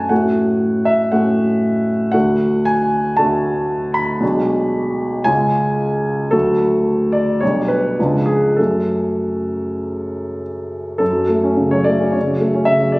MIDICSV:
0, 0, Header, 1, 2, 480
1, 0, Start_track
1, 0, Key_signature, 3, "minor"
1, 0, Tempo, 513699
1, 100, Time_signature, 4, 2, 24, 8
1, 3941, Tempo, 532860
1, 6821, Tempo, 560748
1, 7301, Tempo, 602410
1, 10181, Tempo, 545455
1, 11417, End_track
2, 0, Start_track
2, 0, Title_t, "Grand piano"
2, 0, Program_c, 0, 0
2, 0, Control_c, 0, 64, 127
2, 0, Note_on_c, 0, 42, 31
2, 0, Note_on_c, 0, 57, 27
2, 0, Note_on_c, 0, 61, 24
2, 0, Note_on_c, 0, 66, 25
2, 0, Note_on_c, 0, 73, 44
2, 0, Note_on_c, 0, 78, 43
2, 0, Note_on_c, 0, 80, 57
2, 0, Note_on_c, 0, 81, 60
2, 87, Note_off_c, 0, 78, 0
2, 87, Note_on_c, 0, 78, 54
2, 95, Note_off_c, 0, 57, 0
2, 95, Note_on_c, 0, 57, 25
2, 97, Note_on_c, 0, 45, 29
2, 101, Note_off_c, 0, 61, 0
2, 101, Note_on_c, 0, 61, 24
2, 105, Note_off_c, 0, 66, 0
2, 105, Note_on_c, 0, 66, 26
2, 115, Control_c, 0, 64, 0
2, 117, Note_off_c, 0, 73, 0
2, 117, Note_off_c, 0, 81, 0
2, 122, Note_off_c, 0, 80, 0
2, 124, Note_off_c, 0, 42, 0
2, 242, Control_c, 0, 64, 127
2, 798, Note_on_c, 0, 76, 62
2, 812, Note_off_c, 0, 78, 0
2, 1029, Note_off_c, 0, 45, 0
2, 1029, Note_off_c, 0, 57, 0
2, 1031, Note_off_c, 0, 61, 0
2, 1034, Note_off_c, 0, 66, 0
2, 1043, Note_on_c, 0, 78, 55
2, 1049, Note_off_c, 0, 76, 0
2, 1049, Note_on_c, 0, 57, 28
2, 1054, Note_on_c, 0, 45, 35
2, 1054, Note_on_c, 0, 61, 27
2, 1054, Note_on_c, 0, 66, 29
2, 1749, Note_off_c, 0, 78, 0
2, 1966, Note_off_c, 0, 57, 0
2, 1968, Note_off_c, 0, 61, 0
2, 1969, Note_off_c, 0, 45, 0
2, 1969, Note_off_c, 0, 66, 0
2, 1977, Note_on_c, 0, 78, 64
2, 1994, Note_on_c, 0, 62, 29
2, 1997, Note_on_c, 0, 57, 29
2, 1997, Note_on_c, 0, 66, 29
2, 2000, Note_on_c, 0, 38, 33
2, 2018, Control_c, 0, 64, 0
2, 2183, Control_c, 0, 64, 127
2, 2480, Note_on_c, 0, 80, 71
2, 2482, Note_off_c, 0, 78, 0
2, 2935, Note_off_c, 0, 62, 0
2, 2937, Note_off_c, 0, 57, 0
2, 2937, Note_off_c, 0, 66, 0
2, 2938, Note_off_c, 0, 38, 0
2, 2958, Note_on_c, 0, 81, 63
2, 2960, Note_off_c, 0, 80, 0
2, 2969, Note_on_c, 0, 38, 39
2, 2972, Note_on_c, 0, 57, 28
2, 2972, Note_on_c, 0, 66, 30
2, 2973, Note_on_c, 0, 62, 31
2, 3683, Note_on_c, 0, 83, 67
2, 3691, Note_off_c, 0, 81, 0
2, 3912, Note_off_c, 0, 38, 0
2, 3913, Note_off_c, 0, 57, 0
2, 3914, Note_off_c, 0, 62, 0
2, 3914, Note_off_c, 0, 66, 0
2, 3925, Note_on_c, 0, 35, 36
2, 3930, Note_on_c, 0, 56, 30
2, 3935, Note_on_c, 0, 62, 29
2, 3939, Note_on_c, 0, 66, 28
2, 3956, Control_c, 0, 64, 0
2, 4083, Control_c, 0, 64, 127
2, 4849, Note_off_c, 0, 35, 0
2, 4851, Note_off_c, 0, 56, 0
2, 4854, Note_off_c, 0, 62, 0
2, 4856, Note_off_c, 0, 66, 0
2, 4865, Note_on_c, 0, 80, 68
2, 4872, Note_on_c, 0, 65, 33
2, 4875, Note_on_c, 0, 37, 39
2, 4875, Note_on_c, 0, 56, 31
2, 4878, Note_on_c, 0, 61, 31
2, 4879, Note_off_c, 0, 83, 0
2, 4900, Control_c, 0, 64, 0
2, 5062, Control_c, 0, 64, 127
2, 5813, Note_off_c, 0, 65, 0
2, 5814, Note_off_c, 0, 37, 0
2, 5814, Note_off_c, 0, 56, 0
2, 5816, Note_off_c, 0, 61, 0
2, 5824, Note_on_c, 0, 69, 59
2, 5837, Note_on_c, 0, 38, 37
2, 5838, Note_off_c, 0, 80, 0
2, 5840, Note_on_c, 0, 57, 30
2, 5844, Note_on_c, 0, 54, 27
2, 5846, Note_on_c, 0, 66, 30
2, 5866, Control_c, 0, 64, 0
2, 6017, Control_c, 0, 64, 127
2, 6559, Note_on_c, 0, 74, 57
2, 6563, Note_off_c, 0, 69, 0
2, 6785, Note_off_c, 0, 38, 0
2, 6787, Note_off_c, 0, 57, 0
2, 6789, Note_off_c, 0, 54, 0
2, 6790, Note_off_c, 0, 66, 0
2, 6812, Note_off_c, 0, 74, 0
2, 6812, Note_on_c, 0, 73, 57
2, 6830, Note_on_c, 0, 55, 28
2, 6832, Note_on_c, 0, 35, 33
2, 6832, Note_on_c, 0, 62, 29
2, 6838, Control_c, 0, 64, 0
2, 6973, Control_c, 0, 64, 127
2, 7050, Note_on_c, 0, 71, 51
2, 7054, Note_off_c, 0, 73, 0
2, 7291, Note_off_c, 0, 55, 0
2, 7292, Note_off_c, 0, 35, 0
2, 7292, Note_off_c, 0, 62, 0
2, 7312, Note_on_c, 0, 56, 27
2, 7315, Control_c, 0, 64, 0
2, 7315, Note_on_c, 0, 53, 29
2, 7317, Note_on_c, 0, 62, 29
2, 7319, Note_on_c, 0, 37, 35
2, 7439, Control_c, 0, 64, 127
2, 7525, Note_on_c, 0, 68, 48
2, 7530, Note_off_c, 0, 71, 0
2, 7769, Note_on_c, 0, 69, 40
2, 7771, Note_off_c, 0, 56, 0
2, 7772, Note_off_c, 0, 53, 0
2, 7774, Note_off_c, 0, 37, 0
2, 7774, Note_off_c, 0, 62, 0
2, 7775, Note_off_c, 0, 68, 0
2, 7787, Note_on_c, 0, 54, 22
2, 7788, Note_on_c, 0, 61, 24
2, 7790, Note_on_c, 0, 42, 27
2, 7790, Note_on_c, 0, 57, 23
2, 7798, Control_c, 0, 64, 0
2, 7941, Control_c, 0, 64, 127
2, 9231, Note_off_c, 0, 69, 0
2, 9684, Note_off_c, 0, 54, 0
2, 9685, Note_off_c, 0, 61, 0
2, 9686, Note_off_c, 0, 42, 0
2, 9686, Note_off_c, 0, 57, 0
2, 9697, Note_on_c, 0, 69, 50
2, 9707, Note_on_c, 0, 42, 33
2, 9728, Control_c, 0, 64, 0
2, 9815, Note_on_c, 0, 54, 31
2, 9889, Control_c, 0, 64, 127
2, 9942, Note_on_c, 0, 57, 28
2, 10011, Note_off_c, 0, 54, 0
2, 10057, Note_on_c, 0, 61, 31
2, 10133, Note_off_c, 0, 57, 0
2, 10167, Note_on_c, 0, 49, 30
2, 10254, Note_off_c, 0, 61, 0
2, 10287, Note_on_c, 0, 73, 58
2, 10300, Note_off_c, 0, 69, 0
2, 10300, Note_on_c, 0, 54, 31
2, 10375, Note_off_c, 0, 49, 0
2, 10404, Note_on_c, 0, 74, 62
2, 10417, Note_on_c, 0, 57, 32
2, 10422, Note_off_c, 0, 73, 0
2, 10502, Note_off_c, 0, 54, 0
2, 10537, Note_on_c, 0, 61, 33
2, 10619, Note_off_c, 0, 57, 0
2, 10642, Note_off_c, 0, 42, 0
2, 10646, Note_on_c, 0, 73, 49
2, 10655, Note_on_c, 0, 49, 29
2, 10661, Note_off_c, 0, 74, 0
2, 10693, Control_c, 0, 64, 0
2, 10738, Note_off_c, 0, 61, 0
2, 10778, Note_on_c, 0, 54, 25
2, 10825, Control_c, 0, 64, 127
2, 10855, Note_off_c, 0, 49, 0
2, 10899, Note_on_c, 0, 57, 30
2, 10973, Note_off_c, 0, 54, 0
2, 11018, Note_on_c, 0, 61, 33
2, 11091, Note_off_c, 0, 57, 0
2, 11116, Note_on_c, 0, 76, 67
2, 11129, Note_off_c, 0, 73, 0
2, 11137, Note_on_c, 0, 49, 33
2, 11209, Note_off_c, 0, 61, 0
2, 11251, Note_on_c, 0, 54, 28
2, 11330, Note_off_c, 0, 49, 0
2, 11353, Note_on_c, 0, 74, 51
2, 11368, Note_off_c, 0, 76, 0
2, 11368, Note_on_c, 0, 57, 31
2, 11417, Note_off_c, 0, 54, 0
2, 11417, Note_off_c, 0, 57, 0
2, 11417, Note_off_c, 0, 74, 0
2, 11417, End_track
0, 0, End_of_file